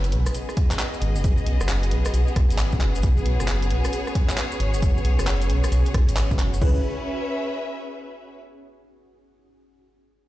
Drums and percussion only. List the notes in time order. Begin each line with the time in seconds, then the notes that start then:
0.04 closed hi-hat, maracas
0.12 open hi-hat
0.26 cross-stick, closed hi-hat, maracas
0.34 closed hi-hat, maracas
0.49 cross-stick, maracas
0.57 kick, open hi-hat
0.71 clap, closed hi-hat, maracas
0.79 clap, closed hi-hat, maracas
0.94 maracas
1.02 open hi-hat
1.16 maracas
1.24 kick, closed hi-hat, maracas
1.37 maracas
1.46 open hi-hat
1.61 cross-stick, maracas
1.69 clap, closed hi-hat, maracas
1.83 closed hi-hat, maracas
1.91 open hi-hat
2.05 cross-stick, closed hi-hat, maracas
2.14 closed hi-hat, maracas
2.28 maracas
2.36 kick, cross-stick, open hi-hat
2.50 closed hi-hat, maracas
2.59 clap, closed hi-hat, maracas
2.72 kick, maracas
2.81 clap, open hi-hat
2.95 maracas
3.03 kick, closed hi-hat, maracas
3.17 maracas
3.26 open hi-hat
3.40 cross-stick, maracas
3.48 clap, closed hi-hat, maracas
3.62 closed hi-hat, maracas
3.70 open hi-hat
3.85 cross-stick, closed hi-hat, maracas
3.93 closed hi-hat, maracas
4.07 cross-stick, maracas
4.15 kick, open hi-hat
4.30 clap, closed hi-hat, maracas
4.38 clap, closed hi-hat, maracas
4.51 maracas
4.60 open hi-hat
4.74 maracas
4.82 kick, closed hi-hat, maracas
4.97 maracas
5.05 open hi-hat
5.19 cross-stick, maracas
5.27 clap, closed hi-hat, maracas
5.42 closed hi-hat, maracas
5.50 open hi-hat
5.64 cross-stick, closed hi-hat, maracas
5.72 closed hi-hat, maracas
5.86 open hi-hat, maracas
5.94 kick, cross-stick, open hi-hat
6.09 closed hi-hat, maracas
6.17 clap, closed hi-hat, maracas
6.31 kick, maracas
6.39 clap, open hi-hat
6.54 maracas
6.61 kick, crash